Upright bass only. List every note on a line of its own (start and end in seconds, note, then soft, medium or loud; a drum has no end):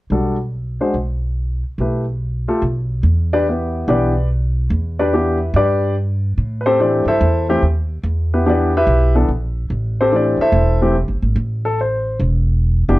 0.10 0.78 B1 medium
0.94 1.62 B1 medium
1.78 2.46 B1 medium
2.62 3.00 B1 medium
3.03 3.83 E2 medium
3.88 4.67 B1 medium
4.70 5.50 E2 medium
5.54 6.33 G2 medium
6.38 7.02 A2 medium
7.06 7.19 G2 medium
7.21 7.59 E2 medium
7.62 8.01 D#2 medium
8.04 8.83 E2 medium
8.87 9.26 B1 medium
9.29 9.67 A#1 medium
9.70 10.35 A1 medium
10.38 muted upright bass stroke soft
10.52 11.04 E1 medium
11.08 11.21 G1 medium
11.22 11.35 G#1 medium
11.36 12.16 A1 medium
12.20 12.85 E1 medium
12.88 12.99 F1 medium